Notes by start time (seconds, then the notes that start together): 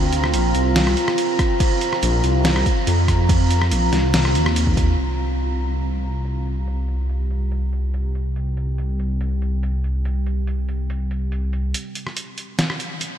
Already playing: D2 C4 F4 A#5
0.13 closed hi-hat
0.24 cross-stick
0.34 A#1, closed hi-hat, crash
0.55 C2, closed hi-hat
0.76 snare, closed hi-hat, crash
0.87 cross-stick
0.97 closed hi-hat
1.08 cross-stick
1.18 closed hi-hat, crash
1.39 kick, cross-stick, closed hi-hat
1.60 kick, closed hi-hat, crash
1.81 closed hi-hat
1.93 cross-stick
2.03 A#1, closed hi-hat, crash
2.24 C2, closed hi-hat
2.45 snare, closed hi-hat, crash
2.56 cross-stick
2.66 kick, closed hi-hat
2.87 F2, closed hi-hat, crash
3.08 kick, cross-stick, closed hi-hat
3.29 kick, closed hi-hat, crash
3.51 closed hi-hat
3.62 cross-stick
3.71 A#1, closed hi-hat, crash
3.93 C2, snare, closed hi-hat
4.14 snare, closed hi-hat, crash
4.25 cross-stick
4.35 D#2, closed hi-hat
4.46 cross-stick
4.56 closed hi-hat, crash
4.67 kick
4.77 kick, closed hi-hat
4.98 C2 C4 G4 G5, closed hi-hat
5.19 closed hi-hat
5.41 closed hi-hat
5.62 closed hi-hat
5.83 closed hi-hat
6.04 closed hi-hat
6.25 closed hi-hat
6.46 closed hi-hat
6.67 closed hi-hat
6.88 closed hi-hat
7.10 closed hi-hat
7.31 closed hi-hat
7.52 closed hi-hat
7.73 closed hi-hat
7.94 closed hi-hat
8.15 closed hi-hat
8.36 closed hi-hat
8.57 closed hi-hat
8.78 closed hi-hat
9.00 closed hi-hat
9.21 closed hi-hat
9.42 closed hi-hat
9.63 closed hi-hat
9.84 closed hi-hat
10.05 closed hi-hat
10.26 closed hi-hat
10.47 closed hi-hat
10.69 closed hi-hat
10.90 closed hi-hat
11.11 closed hi-hat
11.32 closed hi-hat
11.53 closed hi-hat
11.74 C4 G4 G5, closed hi-hat
11.95 closed hi-hat
12.07 cross-stick
12.17 closed hi-hat
12.38 closed hi-hat
12.59 snare, closed hi-hat
12.70 cross-stick
12.80 closed hi-hat
13.01 closed hi-hat